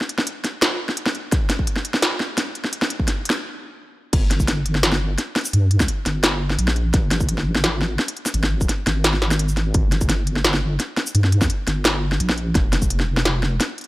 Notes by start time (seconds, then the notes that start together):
0.01 snare
0.09 closed hi-hat
0.18 snare
0.27 closed hi-hat
0.44 snare, closed hi-hat
0.62 snare, closed hi-hat
0.89 snare
0.97 closed hi-hat
1.06 snare
1.15 closed hi-hat
1.32 kick, snare, closed hi-hat
1.50 snare, closed hi-hat
1.59 kick
1.67 closed hi-hat
1.76 snare
1.85 closed hi-hat
1.94 snare
2.02 snare, closed hi-hat
2.20 snare
2.38 snare, closed hi-hat
2.55 closed hi-hat
2.64 snare
2.73 closed hi-hat
2.82 snare
2.90 closed hi-hat
3.00 kick
3.08 snare, closed hi-hat
3.25 closed hi-hat
3.30 snare
4.13 G1, kick, closed hi-hat, crash
4.31 snare, closed hi-hat
4.40 kick, shaker
4.48 snare, closed hi-hat
4.66 closed hi-hat
4.75 snare
4.83 snare, closed hi-hat
4.92 snare
5.18 snare, closed hi-hat
5.36 snare, closed hi-hat
5.38 closed hi-hat
5.41 closed hi-hat
5.44 closed hi-hat, shaker
5.46 closed hi-hat
5.49 closed hi-hat
5.51 closed hi-hat
5.53 G2, closed hi-hat
5.71 closed hi-hat
5.80 kick, snare, shaker
5.88 closed hi-hat
6.06 G1, snare, closed hi-hat
6.24 snare, closed hi-hat
6.50 snare
6.59 A#1, closed hi-hat
6.68 snare
6.76 closed hi-hat
6.94 G#1, kick, snare, closed hi-hat
7.11 snare, closed hi-hat
7.20 kick, shaker
7.29 closed hi-hat
7.38 snare
7.55 snare
7.64 snare, closed hi-hat
7.81 snare
7.99 snare
8.08 closed hi-hat
8.17 closed hi-hat
8.26 snare, shaker
8.34 G#1, closed hi-hat
8.43 snare
8.61 kick, shaker
8.69 snare, closed hi-hat
8.87 G#1, snare, closed hi-hat
9.04 snare, closed hi-hat
9.14 snare
9.22 snare
9.31 snare, shaker
9.39 closed hi-hat
9.49 shaker
9.57 snare, closed hi-hat
9.74 G1, kick, closed hi-hat
9.92 snare, closed hi-hat
10.01 kick, shaker
10.09 snare, closed hi-hat
10.27 closed hi-hat
10.36 snare
10.45 snare, closed hi-hat
10.54 snare
10.80 snare, closed hi-hat
10.97 snare, closed hi-hat
11.06 shaker
11.15 G2, closed hi-hat
11.24 snare
11.32 closed hi-hat
11.42 kick, snare, shaker
11.50 closed hi-hat
11.67 G1, snare, closed hi-hat
11.85 snare, closed hi-hat
12.12 snare
12.20 A#1, closed hi-hat
12.29 snare
12.38 closed hi-hat
12.55 F1, kick, snare, closed hi-hat
12.73 snare, closed hi-hat
12.82 kick, shaker
12.90 closed hi-hat
13.00 snare
13.17 snare
13.25 snare, closed hi-hat
13.43 snare
13.60 snare, closed hi-hat
13.78 closed hi-hat
13.81 closed hi-hat
13.84 closed hi-hat